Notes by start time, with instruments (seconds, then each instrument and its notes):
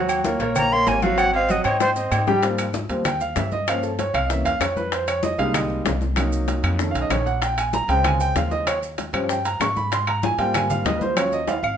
Already playing: upright bass D#2, grand piano F#3 F#4 F#5
0.09 high conga, low agogo, claves, maracas
0.24 grand piano A#3 A#4 C#5, cowbell, high conga, maracas
0.40 upright bass A#1, grand piano A#3 A#4 C#5, cowbell, high conga, low agogo, maracas
0.56 flute A#5, cowbell, high conga, low conga, low agogo, claves, maracas
0.71 grand piano A#3 A#4 C#5, flute C6, high conga
0.87 upright bass G#1, flute G#5, cowbell, high conga, low timbale, low agogo, maracas
1.02 grand piano F#3 F#4 F#5, flute F5, cowbell, high conga, maracas
1.18 flute F#5, cowbell, high conga, low agogo, claves, maracas
1.34 grand piano C4 C5 D#5, flute F5, high conga, low agogo
1.49 grand piano F#3 F#4 F#5, flute D#5, cowbell, high conga, maracas
1.64 upright bass G#2, grand piano C4 C5 D#5, flute C#5, cowbell, high conga, low agogo, claves, maracas
1.80 flute C5, cowbell, high bongo, high conga, low agogo, maracas
1.96 grand piano C4 C5 D#5, high conga, maracas
2.12 upright bass G#2, cowbell, high conga, low timbale, low agogo, claves, maracas
2.27 grand piano G3 G4 G5, low bongo, high conga, maracas
2.42 grand piano F3 G3 A#3 C4, high bongo, high conga, high timbale, maracas
2.58 high bongo, high conga, high timbale, claves, maracas
2.74 high bongo, high conga, maracas
2.89 upright bass D#2, grand piano F3 G3 A#3 C4, high conga, high timbale, maracas
3.05 grand piano G5, high bongo, high conga, low conga, high timbale, claves, maracas
3.21 grand piano F5, high bongo, high conga, maracas
3.36 upright bass G2, grand piano E5, high bongo, low bongo, high conga, high timbale, low timbale, maracas
3.52 grand piano D#5, high bongo, high conga, maracas
3.68 grand piano F3 A#3 C#4 F5, high bongo, high conga, high timbale, claves, maracas
3.83 grand piano A4, high conga, maracas
3.99 grand piano C#5, high bongo, high conga, high timbale, maracas
4.14 upright bass C2, grand piano F5, high bongo, high conga, high timbale, claves, maracas
4.26 grand piano E3 D#5
4.30 grand piano A#3 C#4 E5, high bongo, high conga, maracas
4.45 upright bass E2, grand piano F5, high bongo, high conga, high timbale, maracas
4.60 upright bass F2, grand piano C#5, high bongo, low bongo, high conga, high timbale, claves, maracas
4.76 grand piano B4, high bongo, high conga, maracas
4.92 grand piano C5, high bongo, high timbale, maracas
5.08 grand piano C#5, high bongo, high conga, high timbale, claves, maracas
5.23 grand piano D#5, high bongo, high conga, maracas
5.38 upright bass C2, grand piano G3 G#3 A#3 D#4 F5, high conga, high timbale, maracas
5.54 grand piano D#5, high bongo, high conga, low conga, high timbale, claves, maracas
5.70 high bongo, high conga
5.85 upright bass C2, high bongo, low bongo, high conga, high timbale, low timbale, maracas
6.01 high bongo, high conga, maracas
6.16 grand piano F#3 A#3 D#4, high bongo, high conga, high timbale, claves, maracas
6.32 high conga, maracas
6.48 high bongo, high conga, high timbale, maracas
6.63 upright bass F2, high bongo, high conga, high timbale, claves, maracas
6.79 grand piano D#3 A3 C#4, high bongo, high conga, maracas
6.91 upright bass B1, grand piano F5
6.95 high bongo, high conga, high timbale, maracas
7.01 grand piano D#5
7.10 upright bass A#1, grand piano C#5, high bongo, low bongo, high conga, high timbale, claves, maracas
7.26 grand piano F#5, high bongo, maracas
7.42 grand piano G5, high bongo, high conga, high timbale, maracas
7.58 grand piano G#5, high bongo, high conga, high timbale, claves, maracas
7.73 grand piano A#5, high bongo, high conga, maracas
7.88 upright bass C#2, grand piano C#3 G#3 C4 G5, high conga, high timbale, maracas
8.04 grand piano G#5, high bongo, high conga, low conga, high timbale, claves, maracas
8.20 grand piano G5, high bongo, high conga, maracas
8.36 upright bass D#2, grand piano F5, high bongo, low bongo, high conga, high timbale, maracas
8.51 grand piano D#5, high bongo, high conga, maracas
8.67 grand piano C#5, high bongo, high conga, high timbale, claves, maracas
8.83 high conga, maracas
8.98 high bongo, high conga, high timbale, maracas
9.13 upright bass G2, grand piano F3 G3 C#4, high bongo, high conga, high timbale, claves, maracas
9.29 grand piano G5, high bongo, high conga, maracas
9.45 grand piano A#5, high bongo, high conga, high timbale, maracas
9.60 upright bass G#2, grand piano C#6, high bongo, low bongo, high conga, high timbale, low timbale, claves, maracas
9.76 grand piano B5, high bongo, high conga, maracas
9.92 grand piano C6, high bongo, high conga, high timbale, maracas
10.07 grand piano A#5, high bongo, high conga, high timbale, claves
10.23 grand piano G#5, high bongo, high conga, maracas
10.38 upright bass G#2, grand piano G3 A#3 C4 F4 G5, high conga, high timbale, maracas
10.54 grand piano G#5, high bongo, high conga, low conga, high timbale, claves, maracas
10.70 grand piano F5, high bongo, high conga, low conga, maracas
10.85 upright bass D#2, grand piano D#5, high bongo, low bongo, high conga, high timbale, maracas
10.97 grand piano B4, high bongo, high conga, maracas
11.02 grand piano C5
11.16 grand piano F#3 C#4 F4 C#5, high bongo, high conga, high timbale, claves, maracas
11.33 grand piano D#5, high conga, maracas
11.47 grand piano F5, high bongo, high conga, high timbale, maracas
11.63 upright bass G#1, grand piano F5, high bongo, high conga, claves, maracas